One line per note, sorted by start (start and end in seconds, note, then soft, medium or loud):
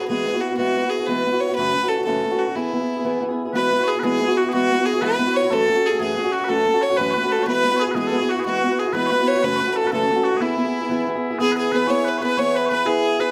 0.01 0.09 B3 soft
0.01 0.10 E4 soft
0.01 0.09 F#4 soft
0.08 0.26 E3 medium
0.08 0.24 G#3 medium
0.08 0.26 B3 medium
0.08 0.26 E4 medium
0.08 0.28 F#4 medium
0.08 0.42 G#4 medium
0.25 0.34 G#3 medium
0.25 0.35 B3 soft
0.25 0.34 E4 soft
0.25 0.32 F#4 medium
0.33 0.52 B3 soft
0.33 0.51 E4 soft
0.33 0.49 F#4 soft
0.41 0.56 F#4 medium
0.50 0.57 B3 soft
0.50 0.58 E4 soft
0.50 0.58 F#4 soft
0.57 0.75 E3 medium
0.57 0.73 G#3 medium
0.57 0.75 B3 medium
0.57 0.76 E4 medium
0.57 0.91 F#4 loud
0.57 0.76 F#4 medium
0.74 0.83 G#3 soft
0.74 0.84 B3 medium
0.74 0.84 E4 soft
0.74 0.82 F#4 medium
0.83 1.01 B3 soft
0.83 1.00 E4 soft
0.83 0.98 F#4 soft
0.90 1.08 G#4 medium
0.99 1.08 B3 soft
0.99 1.08 E4 soft
0.99 1.08 F#4 soft
1.06 1.25 E3 medium
1.06 1.23 G#3 medium
1.06 1.24 B3 medium
1.06 1.26 E4 medium
1.06 1.26 F#4 medium
1.06 1.42 B4 medium
1.24 1.33 G#3 soft
1.24 1.33 B3 medium
1.24 1.33 E4 soft
1.24 1.31 F#4 medium
1.32 1.50 B3 soft
1.32 1.49 E4 soft
1.32 1.48 F#4 medium
1.40 1.54 C#5 medium
1.49 1.59 B3 soft
1.49 1.58 E4 soft
1.49 1.57 F#4 soft
1.55 1.75 F#2 medium
1.55 1.75 C#3 medium
1.55 1.73 E3 medium
1.55 1.90 B4 medium
1.59 1.75 A3 medium
1.59 1.76 C#4 medium
1.59 1.76 F#4 medium
1.74 1.83 E3 soft
1.74 1.83 A3 medium
1.74 1.83 C#4 soft
1.74 1.82 F#4 medium
1.83 2.00 E3 soft
1.83 1.99 A3 soft
1.83 1.98 C#4 soft
1.83 1.97 F#4 soft
1.89 2.04 A4 medium
1.98 2.05 E3 soft
1.98 2.06 A3 soft
1.98 2.06 C#4 soft
1.98 2.06 F#4 soft
2.04 2.23 F#2 medium
2.04 2.24 C#3 medium
2.04 2.21 E3 medium
2.04 2.23 A3 medium
2.04 2.24 C#4 medium
2.04 2.25 F#4 medium
2.04 2.40 A4 medium
2.22 2.31 E3 soft
2.22 2.32 A3 medium
2.22 2.31 C#4 medium
2.22 2.30 F#4 medium
2.31 2.48 E3 soft
2.31 2.47 A3 soft
2.31 2.47 C#4 soft
2.31 2.45 F#4 medium
2.38 2.57 F#4 medium
2.48 2.53 E3 soft
2.48 2.55 A3 soft
2.48 2.56 C#4 medium
2.55 2.72 E3 medium
2.55 2.72 B3 medium
2.55 3.22 E4 medium
2.55 2.74 E4 medium
2.55 2.74 G#4 medium
2.73 2.81 E3 soft
2.73 2.81 B3 soft
2.73 2.80 E4 soft
2.73 2.78 G#4 medium
2.80 2.98 B3 soft
2.80 2.97 E4 soft
2.80 2.95 G#4 soft
2.97 3.04 B3 soft
2.97 3.04 E4 soft
2.97 3.05 G#4 soft
3.04 3.19 E3 medium
3.04 3.20 B3 medium
3.04 3.22 E4 medium
3.04 3.22 G#4 medium
3.20 3.29 E3 medium
3.20 3.30 B3 medium
3.20 3.29 E4 medium
3.20 3.27 G#4 medium
3.29 3.47 B3 soft
3.29 3.45 E4 medium
3.29 3.44 G#4 medium
3.45 3.53 B3 soft
3.45 3.54 E4 soft
3.45 3.54 G#4 medium
3.53 3.71 E3 medium
3.53 3.69 G#3 medium
3.53 3.70 B3 medium
3.53 3.71 E4 medium
3.53 3.72 F#4 medium
3.53 3.83 B4 medium
3.53 3.89 B4 loud
3.71 3.79 G#3 soft
3.71 3.80 B3 soft
3.71 3.79 E4 medium
3.71 3.77 F#4 medium
3.79 3.97 B3 soft
3.79 3.95 E4 soft
3.79 3.94 F#4 soft
3.83 3.88 C#5 medium
3.88 4.04 G#4 medium
3.88 3.99 G#4 medium
3.95 4.03 B3 soft
3.95 4.03 E4 soft
3.95 4.03 F#4 soft
3.99 4.20 E3 medium
3.99 4.19 G#3 medium
3.99 4.03 B4 medium
4.03 4.20 B3 medium
4.03 4.21 E4 medium
4.03 4.21 F#4 medium
4.03 4.37 G#4 medium
4.03 4.39 G#4 medium
4.20 4.28 G#3 medium
4.20 4.29 B3 soft
4.20 4.29 E4 medium
4.20 4.27 F#4 medium
4.28 4.46 B3 soft
4.28 4.45 E4 soft
4.28 4.43 F#4 medium
4.37 4.53 F#4 medium
4.37 4.49 F#4 medium
4.44 4.53 B3 soft
4.44 4.53 E4 soft
4.44 4.52 F#4 soft
4.49 4.53 G#4 medium
4.53 4.70 E3 medium
4.53 4.70 G#3 medium
4.53 4.71 B3 medium
4.53 4.71 E4 medium
4.53 4.86 F#4 medium
4.53 4.87 F#4 loud
4.53 4.71 F#4 medium
4.71 4.78 G#3 soft
4.71 4.79 B3 medium
4.71 4.79 E4 soft
4.71 4.77 F#4 soft
4.78 4.96 B3 soft
4.78 4.94 E4 soft
4.78 4.92 F#4 medium
4.85 5.04 G#4 medium
4.85 5.01 G#4 medium
4.94 5.01 B3 soft
4.94 5.02 E4 soft
4.94 5.02 F#4 soft
5.01 5.19 E3 medium
5.01 5.17 G#3 medium
5.01 5.18 B3 medium
5.01 5.19 E4 medium
5.01 5.20 F#4 medium
5.01 5.34 B4 medium
5.01 5.38 B4 loud
5.18 5.26 G#3 medium
5.18 5.27 B3 medium
5.18 5.27 E4 medium
5.18 5.25 F#4 medium
5.26 5.44 B3 soft
5.26 5.43 E4 medium
5.26 5.41 F#4 medium
5.34 5.50 C#5 medium
5.34 5.55 C#5 medium
5.42 5.51 B3 soft
5.42 5.52 E4 soft
5.42 5.51 F#4 medium
5.50 5.68 F#2 medium
5.50 5.68 E3 medium
5.50 5.65 F#3 medium
5.50 5.66 A3 medium
5.50 5.67 C#4 medium
5.50 5.68 F#4 medium
5.50 5.99 A4 medium
5.50 5.87 A4 loud
5.66 5.75 F#3 soft
5.66 5.76 A3 soft
5.66 5.75 C#4 soft
5.66 5.74 F#4 medium
5.75 5.93 F#3 soft
5.75 5.92 A3 soft
5.75 5.91 C#4 soft
5.75 5.89 F#4 medium
5.86 6.00 G#4 medium
5.90 5.99 F#3 soft
5.90 6.00 A3 soft
5.90 6.00 C#4 soft
5.90 5.99 F#4 soft
5.99 6.17 F#2 medium
5.99 6.17 E3 medium
5.99 6.14 F#3 medium
5.99 6.16 A3 medium
5.99 6.17 C#4 medium
5.99 6.18 F#4 medium
5.99 6.32 G#4 medium
5.99 6.35 G#4 medium
6.16 6.24 F#3 medium
6.16 6.25 A3 medium
6.16 6.24 C#4 medium
6.16 6.23 F#4 medium
6.24 6.42 F#3 soft
6.24 6.41 A3 medium
6.24 6.40 C#4 medium
6.24 6.40 F#4 medium
6.32 6.44 F#4 medium
6.32 6.51 F#4 medium
6.41 6.48 F#3 soft
6.41 6.49 A3 soft
6.41 6.49 C#4 soft
6.41 6.49 F#4 soft
6.41 6.49 B4 medium
6.48 6.66 F#2 medium
6.48 6.66 E3 medium
6.48 6.64 F#3 medium
6.48 6.66 A3 medium
6.48 6.67 C#4 medium
6.48 6.67 F#4 medium
6.48 6.81 A4 medium
6.48 6.84 A4 loud
6.65 6.74 F#3 medium
6.65 6.74 A3 soft
6.65 6.74 C#4 soft
6.65 6.72 F#4 soft
6.74 6.92 F#3 soft
6.74 6.91 A3 soft
6.74 6.90 C#4 medium
6.74 6.88 F#4 soft
6.81 6.97 C#5 medium
6.81 6.99 C#5 medium
6.90 6.98 F#3 soft
6.90 6.98 A3 soft
6.90 6.99 C#4 soft
6.90 6.98 F#4 soft
6.97 7.15 F#2 medium
6.97 7.16 E3 medium
6.97 7.14 F#3 medium
6.97 7.15 A3 medium
6.97 7.16 C#4 medium
6.97 7.10 B4 medium
6.97 7.33 B4 medium
7.01 7.16 F#4 medium
7.10 7.43 B4 medium
7.10 7.14 C#5 medium
7.15 7.23 F#3 medium
7.15 7.24 A3 medium
7.15 7.24 C#4 medium
7.15 7.22 F#4 medium
7.24 7.41 F#3 soft
7.24 7.40 A3 medium
7.24 7.38 C#4 medium
7.24 7.37 F#4 medium
7.32 7.46 A4 medium
7.38 7.46 F#3 soft
7.38 7.47 A3 soft
7.38 7.47 C#4 soft
7.38 7.47 F#4 soft
7.43 7.64 E3 medium
7.43 7.62 G#3 medium
7.43 7.82 B4 loud
7.43 7.76 B4 medium
7.43 7.47 C#5 medium
7.47 7.63 B3 medium
7.47 7.64 E4 medium
7.47 7.65 F#4 medium
7.63 7.72 G#3 medium
7.63 7.72 B3 medium
7.63 7.71 E4 medium
7.63 7.69 F#4 medium
7.71 7.88 B3 soft
7.71 7.87 E4 soft
7.71 7.85 F#4 soft
7.76 7.91 G#4 medium
7.76 7.79 C#5 medium
7.81 7.96 G#4 medium
7.87 7.95 B3 soft
7.87 7.95 E4 soft
7.87 7.95 F#4 soft
7.91 8.12 E3 medium
7.91 8.10 G#3 medium
7.91 8.07 G#4 medium
7.91 7.95 B4 medium
7.96 8.11 B3 medium
7.96 8.12 E4 medium
7.96 8.13 F#4 medium
7.96 8.32 G#4 medium
8.07 8.20 G#3 medium
8.07 8.18 A4 medium
8.12 8.21 B3 medium
8.12 8.21 E4 soft
8.12 8.19 F#4 medium
8.18 8.37 E4 medium
8.18 8.35 F#4 soft
8.18 8.29 G#4 medium
8.24 8.38 B3 soft
8.29 8.39 F#4 medium
8.29 8.45 F#4 medium
8.37 8.45 B3 soft
8.37 8.46 E4 soft
8.37 8.45 F#4 soft
8.37 8.44 G#4 medium
8.44 8.63 E3 medium
8.44 8.60 G#3 medium
8.44 8.62 B3 medium
8.44 8.62 E4 medium
8.44 8.79 F#4 medium
8.44 8.81 F#4 medium
8.48 8.64 F#4 medium
8.61 8.70 G#3 soft
8.61 8.71 B3 medium
8.61 8.70 E4 soft
8.61 8.67 F#4 medium
8.69 8.87 B3 soft
8.69 8.86 E4 soft
8.69 8.84 F#4 soft
8.79 8.93 G#4 medium
8.79 8.95 G#4 medium
8.85 8.93 B3 soft
8.85 8.93 E4 soft
8.85 8.94 F#4 medium
8.93 9.11 E3 medium
8.93 9.09 G#3 medium
8.93 9.10 B3 medium
8.93 9.11 E4 medium
8.93 9.12 F#4 medium
8.93 9.06 B4 medium
8.93 9.29 B4 medium
9.06 9.19 G#3 soft
9.06 9.11 C#5 medium
9.11 9.19 B3 medium
9.11 9.19 E4 medium
9.11 9.18 F#4 medium
9.11 9.39 B4 medium
9.19 9.37 B3 soft
9.19 9.35 E4 medium
9.19 9.34 F#4 medium
9.28 9.45 C#5 medium
9.35 9.44 B3 soft
9.35 9.44 E4 soft
9.35 9.43 F#4 medium
9.39 9.60 F#2 medium
9.39 9.55 B4 medium
9.39 9.42 C#5 medium
9.43 9.60 C#3 medium
9.43 9.58 E3 medium
9.43 9.59 A3 medium
9.43 9.61 C#4 medium
9.43 9.61 F#4 medium
9.43 9.72 B4 loud
9.55 9.68 E3 soft
9.55 9.60 C#5 medium
9.60 9.68 A3 medium
9.60 9.68 C#4 soft
9.60 9.66 F#4 medium
9.60 9.75 B4 medium
9.67 9.85 E3 soft
9.67 9.84 A3 soft
9.67 9.83 C#4 medium
9.67 9.82 F#4 soft
9.72 9.87 A4 medium
9.72 9.78 B4 medium
9.77 9.92 A4 medium
9.84 9.91 E3 soft
9.84 9.92 A3 soft
9.84 9.92 C#4 soft
9.84 9.92 F#4 soft
9.84 9.91 B4 medium
9.91 10.09 F#2 medium
9.91 10.09 C#3 medium
9.91 10.06 E3 medium
9.91 10.08 A3 medium
9.91 10.09 C#4 medium
9.91 10.10 F#4 medium
9.91 10.24 A4 medium
9.91 10.27 A4 medium
10.07 10.16 E3 soft
10.07 10.16 A3 medium
10.07 10.16 C#4 medium
10.07 10.14 F#4 medium
10.16 10.34 E3 soft
10.16 10.33 A3 soft
10.16 10.32 C#4 medium
10.16 10.30 F#4 medium
10.24 10.37 F#4 medium
10.24 10.43 F#4 medium
10.32 10.38 E3 soft
10.32 10.40 A3 soft
10.32 10.41 C#4 soft
10.32 10.40 F#4 soft
10.37 10.55 E3 medium
10.37 10.56 B3 medium
10.37 10.41 G#4 soft
10.41 11.39 E4 soft
10.41 11.08 E4 medium
10.41 10.57 E4 medium
10.41 10.58 G#4 medium
10.56 10.65 E3 soft
10.56 10.66 B3 medium
10.56 10.65 E4 soft
10.56 10.63 G#4 soft
10.64 10.83 B3 soft
10.64 10.81 E4 medium
10.64 10.80 G#4 soft
10.81 10.89 B3 soft
10.81 10.90 E4 soft
10.81 10.90 G#4 soft
10.89 11.05 E3 medium
10.89 11.06 B3 medium
10.89 11.08 E4 medium
10.89 11.08 G#4 medium
11.07 11.15 E3 medium
11.07 11.16 B3 medium
11.07 11.16 E4 medium
11.07 11.14 G#4 medium
11.15 11.32 B3 soft
11.15 11.31 E4 medium
11.15 11.29 G#4 medium
11.30 11.39 B3 soft
11.30 11.40 E4 soft
11.30 11.39 G#4 medium
11.39 11.70 E3 medium
11.39 11.73 B3 medium
11.39 11.72 E4 medium
11.39 11.52 G#4 medium
11.39 11.56 G#4 medium
11.39 11.73 G#4 medium
11.52 11.56 B4 medium
11.56 11.72 G#4 medium
11.56 11.77 G#4 medium
11.71 11.88 E3 medium
11.71 11.88 B3 medium
11.71 11.87 E4 medium
11.71 11.86 G#4 medium
11.71 11.87 B4 medium
11.76 11.92 B4 medium
11.87 12.22 E3 soft
11.87 12.23 B3 medium
11.87 12.21 E4 medium
11.87 12.20 G#4 medium
11.87 12.04 C#5 medium
11.87 12.10 C#5 medium
12.04 12.18 B4 medium
12.04 12.23 B4 medium
12.18 12.37 G#4 medium
12.18 12.37 B4 medium
12.18 12.22 C#5 medium
12.23 12.37 B3 soft
12.23 12.37 E4 soft
12.23 12.41 B4 medium
12.37 12.69 E3 medium
12.37 12.72 B3 medium
12.37 12.71 E4 medium
12.37 12.71 G#4 medium
12.37 12.55 C#5 medium
12.37 12.58 C#5 medium
12.55 12.66 B4 medium
12.55 12.71 B4 medium
12.66 12.86 B4 medium
12.66 12.69 C#5 medium
12.70 12.86 E3 soft
12.70 12.87 B3 medium
12.70 12.86 E4 soft
12.70 12.84 G#4 medium
12.70 12.87 B4 medium
12.86 13.20 E3 medium
12.86 13.22 B3 medium
12.86 13.20 E4 medium
12.86 13.18 G#4 medium
12.86 13.22 G#4 medium
12.86 13.20 G#4 medium
13.19 13.31 B3 soft
13.19 13.31 E4 soft
13.19 13.31 G#4 medium
13.19 13.31 B4 medium